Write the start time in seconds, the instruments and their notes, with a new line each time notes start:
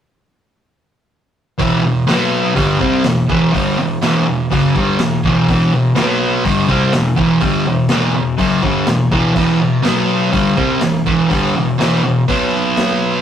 1.58 distorted electric guitar E2 B2 E3, kick, open hi-hat
1.82 distorted electric guitar E2 B2
2.07 distorted electric guitar B2 F#3 B3, snare, open hi-hat
2.54 distorted electric guitar G2 D3 G3, kick, open hi-hat
2.79 distorted electric guitar C3 G3 C4, kick
3.04 distorted electric guitar E2 B2, snare, open hi-hat
3.29 distorted electric guitar E2 B2 E3, kick
3.52 distorted electric guitar G2 D3 G3, kick, open hi-hat
3.78 distorted electric guitar E2 B2
4.02 distorted electric guitar E2 B2 E3, snare, open hi-hat
4.26 distorted electric guitar E2 B2
4.51 distorted electric guitar F#2 C#3 F#3, kick, open hi-hat
4.75 distorted electric guitar G2 D3 G3, kick
4.99 distorted electric guitar E2 B2, snare, open hi-hat
5.24 distorted electric guitar E2 B2 E3, kick
5.48 distorted electric guitar E2 B2 E3, kick, open hi-hat
5.73 distorted electric guitar E2 B2
5.95 distorted electric guitar B2 F#3 B3, snare, open hi-hat
6.45 distorted electric guitar G2 D3 G3, kick, open hi-hat
6.68 distorted electric guitar C3 G3 C4, kick
6.93 distorted electric guitar E2 B2, snare, open hi-hat
7.16 distorted electric guitar E2 B2 E3, kick
7.40 distorted electric guitar G2 D3 G3, kick, open hi-hat
7.65 distorted electric guitar E2 B2
7.89 distorted electric guitar E2 B2 E3, snare, open hi-hat
8.14 distorted electric guitar E2 B2
8.38 distorted electric guitar F#2 C#3 F#3, kick, open hi-hat
8.62 distorted electric guitar G2 D3 G3, kick
8.87 distorted electric guitar E2 B2, snare, open hi-hat
9.12 distorted electric guitar E2 B2 E3, kick
9.35 distorted electric guitar E2 B2 E3, kick, crash
9.60 distorted electric guitar E2 B2
9.82 distorted electric guitar B2 F#3 B3, snare, open hi-hat
10.31 distorted electric guitar G2 D3 G3, kick, open hi-hat
10.56 distorted electric guitar C3 G3 C4, kick
10.81 distorted electric guitar E2 B2, snare, open hi-hat
11.06 distorted electric guitar E2 B2 E3, kick
11.30 distorted electric guitar G2 D3 G3, kick, open hi-hat
11.57 distorted electric guitar E2 B2
11.79 distorted electric guitar E2 B2 E3, snare, open hi-hat
12.04 distorted electric guitar E2 B2
12.28 distorted electric guitar B2 F#3 B3, kick, open hi-hat
12.77 snare, open hi-hat